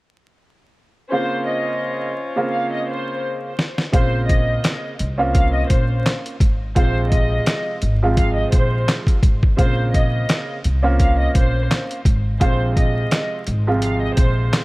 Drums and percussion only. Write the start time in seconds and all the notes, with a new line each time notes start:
3.59 snare
3.78 snare
3.94 kick, closed hi-hat
4.29 kick, closed hi-hat
4.64 snare, clap, closed hi-hat
4.99 closed hi-hat
5.35 kick, closed hi-hat
5.70 kick, closed hi-hat
6.06 snare, clap, closed hi-hat
6.26 closed hi-hat
6.40 kick, closed hi-hat
6.76 kick, closed hi-hat
7.12 kick, closed hi-hat
7.46 snare, clap, closed hi-hat
7.82 closed hi-hat
8.17 kick, closed hi-hat
8.52 kick, closed hi-hat
8.88 snare, clap, closed hi-hat
9.07 kick, closed hi-hat
9.23 kick, closed hi-hat
9.43 kick
9.59 kick, closed hi-hat
9.94 kick, closed hi-hat
10.29 snare, clap, closed hi-hat
10.64 closed hi-hat
11.00 kick, closed hi-hat
11.35 kick, closed hi-hat
11.71 snare, clap, closed hi-hat
11.91 closed hi-hat
12.05 kick, closed hi-hat
12.41 kick, closed hi-hat
12.77 kick, closed hi-hat
13.11 snare, clap, closed hi-hat
13.47 closed hi-hat
13.82 closed hi-hat
14.17 kick, closed hi-hat
14.53 snare, clap, closed hi-hat